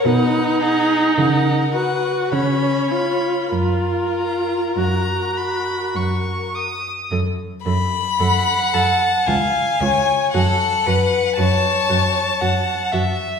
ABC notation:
X:1
M:3/4
L:1/8
Q:1/4=55
K:F#
V:1 name="Violin"
f f f f b b | z a a b c' d' | [K:F#m] z2 f2 ^e c | A B c2 f e |]
V:2 name="Violin"
B G A B c2 | A4- A z | [K:F#m] z b2 a g2 | f2 a3 z |]
V:3 name="Viola"
D3 F C E | E2 F3 z | [K:F#m] A A A A ^E E | F F F F F F |]
V:4 name="Cello" clef=bass
B,,2 C,2 C,2 | F,,2 F,,2 F,,2 | [K:F#m] F,, F,, F,, F,, C,, C,, | F,, F,, F,, F,, F,, F,, |]